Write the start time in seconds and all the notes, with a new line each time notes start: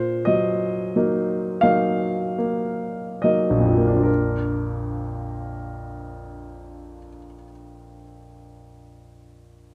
Already playing: A#2 C5
0.25 F#3 D#5
0.96 F#3 A#3 D#4
1.61 F#3 A#3 D#4 F5
2.38 A#3
3.22 F#3 A#3 D#4 D#5
3.50 A#1
3.60 F2
3.69 F3
3.78 A#3
3.87 D4
3.97 F4
4.03 A#4